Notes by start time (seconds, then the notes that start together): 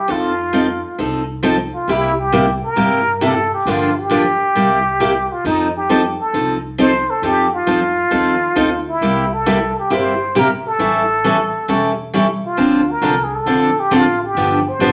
Already playing: G4
0.08 F2 F3 C4 D#4 F4 A4
0.53 F3 C4 D#4 A4
0.99 C2 F3 C4 D#4 A4
1.43 F3 C4 D#4 A4
1.74 F4
1.88 C2 C3 G3 A#3 E4 G4
2.20 G4
2.32 C3 G3 A#3 E4 G4
2.64 A#4
2.76 G2 C3 G3 A#3 E4 G4
3.21 C3 G3 A#3 E4 G4 A4
3.54 G4
3.66 G1 D3 F3 A#3 D4 G4
3.70 F4
3.99 G4
4.10 D3 F3 A#3 D4 G4
4.55 C2 C3 G3 A#3 E4 G4
5.00 C3 G3 A#3 E4 G4
5.32 F4
5.44 F2 F3 C4 D#4 A4
5.77 G4
5.89 F3 C4 D#4 A4
6.20 A4
6.33 C2 F3 C4 D#4 A4
6.78 F3 C4 D#4 A4 C5
7.10 A4
7.22 F2 F3 C4 D#4 G4 A4
7.54 F4
7.67 F2 F3 C4 D#4 A4
8.11 D#2 F3 C4 D#4 A4
8.56 D2 F3 C4 D#4 A4
8.88 E4
9.01 C2 C3 G3 A#3 E4 G4
9.33 A4
9.46 C3 G3 A#3 E4 G4
9.79 G4
9.90 G1 C3 G3 A#3 E4 G4 C5
10.35 C3 G3 A#3 E4 G4 A#4
10.66 A4
10.79 A1 E3 G3 C#4 E4 A4
11.24 E3 G3 C#4 E4 A4
11.68 E1 E3 G3 C#4 E4 A4
12.14 E3 G3 C#4 E4 A4
12.45 F4
12.57 D2 D3 F3 C4 D4 A4
12.91 A#4
13.01 C2 D3 F3 C4 D4 A4
13.24 G#4
13.35 A4
13.46 A#1 D3 F3 C4 D4 A4
13.80 G4
13.91 A1 D3 F3 C4 D4 A4
13.95 F4
14.24 G4
14.35 G1 D3 F3 B3 D4 G4
14.69 C5
14.79 G1 D3 F3 B3 D4 G4